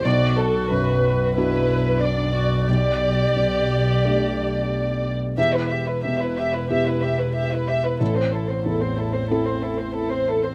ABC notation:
X:1
M:4/4
L:1/16
Q:1/4=92
K:Em
V:1 name="Violin section"
d2 A2 B4 B4 d4 | d12- d3 z | e B e B e B e B e B e B e B e B | A c A c A c A c A c A c A c A c |]
V:2 name="Viola"
F8 E4 D2 F2 | G12- G3 z | G E G E G E G E G E G E G E G E | E C E C E C E C E C E C E C E C |]
V:3 name="Felt piano"
B,,,4 F,,4 [B,DF]8 | B,,,4 B,,4 [A,DG]8 | E,,4 B,,4 [B,EG]8 | A,,,4 E,,4 [CEA]8 |]
V:4 name="Double bass" clef=bass
B,,,16- | B,,,16 | E,,,16 | A,,,16 |]